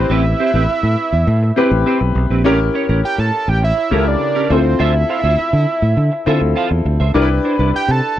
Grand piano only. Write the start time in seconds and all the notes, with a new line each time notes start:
Already playing: C4 E4 G4 B4
1.56 C4 E4 G4 B4
2.44 C#4 E4 G4 A#4
3.91 C#3 E4 G4 A4
3.99 A#4
4.50 C4 E4 F4 A4
6.26 C4 E4 F4 A4
7.14 D4 E4 G4 A#4
7.22 B4